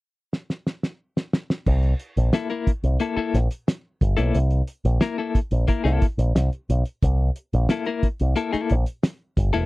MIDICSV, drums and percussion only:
0, 0, Header, 1, 2, 480
1, 0, Start_track
1, 0, Tempo, 670241
1, 1191, Time_signature, 4, 2, 24, 8
1, 6915, End_track
2, 0, Start_track
2, 0, Title_t, "Drums"
2, 237, Note_on_c, 9, 38, 50
2, 308, Note_off_c, 9, 38, 0
2, 358, Note_on_c, 9, 38, 46
2, 429, Note_off_c, 9, 38, 0
2, 477, Note_on_c, 9, 38, 62
2, 548, Note_off_c, 9, 38, 0
2, 597, Note_on_c, 9, 38, 59
2, 668, Note_off_c, 9, 38, 0
2, 837, Note_on_c, 9, 38, 70
2, 909, Note_off_c, 9, 38, 0
2, 955, Note_on_c, 9, 38, 100
2, 1027, Note_off_c, 9, 38, 0
2, 1075, Note_on_c, 9, 38, 92
2, 1146, Note_off_c, 9, 38, 0
2, 1191, Note_on_c, 9, 49, 80
2, 1192, Note_on_c, 9, 36, 85
2, 1262, Note_off_c, 9, 49, 0
2, 1264, Note_off_c, 9, 36, 0
2, 1309, Note_on_c, 9, 42, 32
2, 1381, Note_off_c, 9, 42, 0
2, 1429, Note_on_c, 9, 42, 65
2, 1501, Note_off_c, 9, 42, 0
2, 1554, Note_on_c, 9, 42, 44
2, 1625, Note_off_c, 9, 42, 0
2, 1667, Note_on_c, 9, 38, 118
2, 1672, Note_on_c, 9, 42, 77
2, 1739, Note_off_c, 9, 38, 0
2, 1743, Note_off_c, 9, 42, 0
2, 1787, Note_on_c, 9, 42, 33
2, 1858, Note_off_c, 9, 42, 0
2, 1912, Note_on_c, 9, 36, 86
2, 1915, Note_on_c, 9, 42, 65
2, 1984, Note_off_c, 9, 36, 0
2, 1986, Note_off_c, 9, 42, 0
2, 2032, Note_on_c, 9, 42, 51
2, 2103, Note_off_c, 9, 42, 0
2, 2148, Note_on_c, 9, 42, 74
2, 2219, Note_off_c, 9, 42, 0
2, 2395, Note_on_c, 9, 38, 30
2, 2395, Note_on_c, 9, 42, 62
2, 2467, Note_off_c, 9, 38, 0
2, 2467, Note_off_c, 9, 42, 0
2, 2512, Note_on_c, 9, 42, 56
2, 2584, Note_off_c, 9, 42, 0
2, 2636, Note_on_c, 9, 38, 105
2, 2638, Note_on_c, 9, 42, 94
2, 2707, Note_off_c, 9, 38, 0
2, 2709, Note_off_c, 9, 42, 0
2, 2874, Note_on_c, 9, 36, 88
2, 2878, Note_on_c, 9, 42, 66
2, 2945, Note_off_c, 9, 36, 0
2, 2949, Note_off_c, 9, 42, 0
2, 2992, Note_on_c, 9, 42, 48
2, 3064, Note_off_c, 9, 42, 0
2, 3112, Note_on_c, 9, 42, 88
2, 3184, Note_off_c, 9, 42, 0
2, 3227, Note_on_c, 9, 42, 38
2, 3299, Note_off_c, 9, 42, 0
2, 3348, Note_on_c, 9, 42, 63
2, 3420, Note_off_c, 9, 42, 0
2, 3475, Note_on_c, 9, 42, 44
2, 3546, Note_off_c, 9, 42, 0
2, 3586, Note_on_c, 9, 38, 109
2, 3591, Note_on_c, 9, 42, 87
2, 3658, Note_off_c, 9, 38, 0
2, 3662, Note_off_c, 9, 42, 0
2, 3831, Note_on_c, 9, 36, 81
2, 3832, Note_on_c, 9, 42, 72
2, 3903, Note_off_c, 9, 36, 0
2, 3904, Note_off_c, 9, 42, 0
2, 3946, Note_on_c, 9, 42, 50
2, 4018, Note_off_c, 9, 42, 0
2, 4066, Note_on_c, 9, 42, 73
2, 4071, Note_on_c, 9, 36, 86
2, 4137, Note_off_c, 9, 42, 0
2, 4143, Note_off_c, 9, 36, 0
2, 4195, Note_on_c, 9, 38, 28
2, 4195, Note_on_c, 9, 42, 33
2, 4267, Note_off_c, 9, 38, 0
2, 4267, Note_off_c, 9, 42, 0
2, 4309, Note_on_c, 9, 38, 33
2, 4309, Note_on_c, 9, 42, 58
2, 4312, Note_on_c, 9, 36, 86
2, 4380, Note_off_c, 9, 42, 0
2, 4381, Note_off_c, 9, 38, 0
2, 4383, Note_off_c, 9, 36, 0
2, 4432, Note_on_c, 9, 42, 56
2, 4503, Note_off_c, 9, 42, 0
2, 4553, Note_on_c, 9, 38, 117
2, 4555, Note_on_c, 9, 42, 95
2, 4624, Note_off_c, 9, 38, 0
2, 4626, Note_off_c, 9, 42, 0
2, 4675, Note_on_c, 9, 42, 34
2, 4746, Note_off_c, 9, 42, 0
2, 4797, Note_on_c, 9, 42, 69
2, 4868, Note_off_c, 9, 42, 0
2, 4909, Note_on_c, 9, 42, 49
2, 4980, Note_off_c, 9, 42, 0
2, 5031, Note_on_c, 9, 36, 102
2, 5032, Note_on_c, 9, 42, 83
2, 5103, Note_off_c, 9, 36, 0
2, 5103, Note_off_c, 9, 42, 0
2, 5269, Note_on_c, 9, 42, 65
2, 5341, Note_off_c, 9, 42, 0
2, 5395, Note_on_c, 9, 42, 46
2, 5467, Note_off_c, 9, 42, 0
2, 5507, Note_on_c, 9, 38, 114
2, 5511, Note_on_c, 9, 42, 86
2, 5579, Note_off_c, 9, 38, 0
2, 5583, Note_off_c, 9, 42, 0
2, 5625, Note_on_c, 9, 42, 32
2, 5697, Note_off_c, 9, 42, 0
2, 5750, Note_on_c, 9, 36, 77
2, 5752, Note_on_c, 9, 42, 66
2, 5822, Note_off_c, 9, 36, 0
2, 5823, Note_off_c, 9, 42, 0
2, 5869, Note_on_c, 9, 42, 50
2, 5941, Note_off_c, 9, 42, 0
2, 5986, Note_on_c, 9, 42, 76
2, 6058, Note_off_c, 9, 42, 0
2, 6111, Note_on_c, 9, 38, 27
2, 6111, Note_on_c, 9, 42, 34
2, 6182, Note_off_c, 9, 42, 0
2, 6183, Note_off_c, 9, 38, 0
2, 6227, Note_on_c, 9, 42, 72
2, 6298, Note_off_c, 9, 42, 0
2, 6347, Note_on_c, 9, 42, 55
2, 6419, Note_off_c, 9, 42, 0
2, 6470, Note_on_c, 9, 38, 106
2, 6472, Note_on_c, 9, 42, 91
2, 6541, Note_off_c, 9, 38, 0
2, 6543, Note_off_c, 9, 42, 0
2, 6711, Note_on_c, 9, 36, 89
2, 6713, Note_on_c, 9, 42, 78
2, 6782, Note_off_c, 9, 36, 0
2, 6784, Note_off_c, 9, 42, 0
2, 6827, Note_on_c, 9, 42, 42
2, 6899, Note_off_c, 9, 42, 0
2, 6915, End_track
0, 0, End_of_file